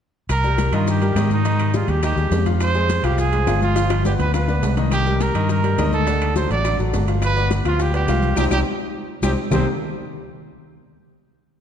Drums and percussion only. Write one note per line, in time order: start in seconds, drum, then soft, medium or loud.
0.29 high bongo medium
0.29 high conga soft
0.29 high timbale loud
0.29 claves medium
0.29 maracas medium
0.44 high conga soft
0.44 maracas soft
0.58 high bongo medium
0.58 high conga medium
0.58 high timbale medium
0.58 low timbale medium
0.58 maracas medium
0.73 high bongo soft
0.73 high timbale medium
0.73 claves medium
0.73 maracas soft
0.87 high bongo medium
0.87 high conga soft
0.87 maracas medium
1.02 high bongo soft
1.02 high conga soft
1.02 high timbale medium
1.02 maracas soft
1.16 high bongo soft
1.16 low bongo medium
1.16 high conga medium
1.16 high timbale medium
1.16 low timbale medium
1.16 claves medium
1.16 maracas medium
1.30 high bongo soft
1.30 high conga medium
1.30 maracas soft
1.45 high bongo medium
1.45 high timbale medium
1.45 maracas medium
1.59 high conga soft
1.59 high timbale medium
1.59 claves medium
1.59 maracas soft
1.74 high bongo medium
1.74 high conga medium
1.74 low timbale medium
1.74 maracas medium
1.88 high bongo soft
1.88 high conga soft
1.88 high timbale medium
1.88 maracas soft
2.03 high bongo medium
2.03 high conga soft
2.03 high timbale medium
2.03 claves medium
2.03 maracas medium
2.17 high bongo soft
2.17 high conga soft
2.17 maracas soft
2.32 high bongo soft
2.32 low bongo medium
2.32 high conga medium
2.32 high timbale medium
2.32 low timbale medium
2.32 maracas medium
2.46 high bongo soft
2.46 high conga medium
2.46 high timbale medium
2.46 maracas soft
2.60 high bongo medium
2.60 high conga soft
2.60 high timbale medium
2.60 claves medium
2.60 maracas medium
2.75 maracas soft
2.89 high bongo medium
2.89 high conga medium
2.89 high timbale medium
2.89 low timbale medium
2.89 maracas medium
3.04 high bongo soft
3.04 high timbale medium
3.04 claves medium
3.04 maracas soft
3.18 high bongo medium
3.18 high conga soft
3.18 maracas medium
3.33 high bongo soft
3.33 high conga soft
3.33 high timbale medium
3.33 maracas soft
3.47 high bongo soft
3.47 low bongo medium
3.47 high conga medium
3.47 high timbale medium
3.47 low timbale medium
3.47 claves medium
3.47 maracas medium
3.61 high bongo soft
3.61 high conga medium
3.61 maracas soft
3.76 high bongo medium
3.76 high timbale medium
3.76 maracas medium
3.90 high bongo loud
3.90 high conga soft
3.90 high timbale loud
3.90 claves medium
3.90 maracas soft
4.05 high bongo medium
4.05 high conga loud
4.05 low timbale medium
4.05 maracas medium
4.19 low bongo medium
4.19 high conga soft
4.19 high timbale medium
4.19 maracas soft
4.34 low bongo loud
4.34 high conga soft
4.34 high timbale medium
4.34 claves medium
4.34 maracas medium
4.48 low bongo medium
4.48 high conga soft
4.48 maracas soft
4.63 high conga medium
4.63 high timbale medium
4.63 low timbale medium
4.63 maracas medium
4.77 low bongo medium
4.77 high conga medium
4.77 high timbale medium
4.77 maracas soft
4.92 high bongo medium
4.92 high conga soft
4.92 high timbale loud
4.92 claves medium
4.92 maracas medium
5.06 high conga soft
5.06 maracas soft
5.21 high bongo medium
5.21 high conga medium
5.21 high timbale medium
5.21 low timbale medium
5.21 maracas medium
5.35 high bongo soft
5.35 high timbale loud
5.35 claves medium
5.35 maracas soft
5.49 high bongo medium
5.49 high conga soft
5.49 maracas medium
5.64 high bongo soft
5.64 high conga soft
5.64 high timbale medium
5.64 maracas soft
5.78 high bongo soft
5.78 low bongo medium
5.78 high conga medium
5.78 high timbale medium
5.78 low timbale medium
5.78 claves medium
5.78 maracas medium
5.92 high bongo soft
5.92 high conga medium
5.92 maracas soft
6.07 high bongo medium
6.07 high timbale medium
6.07 maracas medium
6.21 high conga soft
6.21 high timbale medium
6.21 claves medium
6.21 maracas soft
6.36 high bongo medium
6.36 high conga medium
6.36 low timbale medium
6.36 maracas medium
6.50 high bongo soft
6.50 high conga soft
6.50 high timbale medium
6.50 maracas soft
6.64 high bongo medium
6.64 high conga soft
6.64 high timbale medium
6.64 claves medium
6.64 maracas medium
6.79 high bongo soft
6.79 high conga soft
6.79 maracas soft
6.93 high bongo soft
6.93 low bongo loud
6.93 high conga medium
6.93 high timbale medium
6.93 low timbale medium
6.93 maracas medium
7.08 high bongo soft
7.08 high timbale medium
7.08 maracas soft
7.22 high bongo medium
7.22 high conga soft
7.22 high timbale medium
7.22 claves medium
7.22 maracas medium
7.37 high conga soft
7.37 maracas soft
7.51 high bongo medium
7.51 high conga medium
7.51 high timbale medium
7.51 low timbale medium
7.51 maracas medium
7.65 high bongo soft
7.65 high timbale medium
7.65 claves medium
7.65 maracas soft
7.79 high bongo medium
7.79 high conga soft
7.79 maracas medium
7.94 high bongo soft
7.94 high conga soft
7.94 high timbale medium
7.94 maracas soft
8.08 high bongo soft
8.08 low bongo medium
8.08 high conga medium
8.08 high timbale medium
8.08 low timbale medium
8.08 claves medium
8.08 maracas medium
8.22 high bongo soft
8.22 high conga medium
8.22 maracas soft
8.36 high bongo loud
8.36 high conga loud
8.36 high timbale medium
8.36 claves loud
8.36 maracas loud
8.51 high bongo loud
8.51 high conga medium
8.51 high timbale loud
8.51 claves loud
8.51 maracas medium
9.23 high bongo loud
9.23 high conga loud
9.23 high timbale medium
9.23 claves medium
9.23 maracas loud
9.51 low bongo medium
9.51 low conga loud
9.51 low timbale medium
9.51 claves loud
9.51 maracas loud